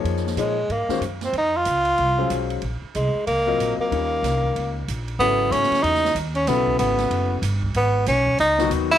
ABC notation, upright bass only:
X:1
M:4/4
L:1/8
Q:"Swing" 1/4=187
K:Bbm
V:1 name="Upright bass" clef=bass
F,,2 B,,2 A,, z G,,2 | F,,2 D,,2 C,,2 =B,,,2 | B,,, z C,, z D,,2 B,,, z | E,,2 C,,2 D,,2 B,,,2 |
[K:G#phr] G,,,2 G,, z E,,2 D,,2 | B,,,2 G,,,2 F,,,2 =G,,,2 | G,,,2 B,,,2 C,,2 D,,2 |]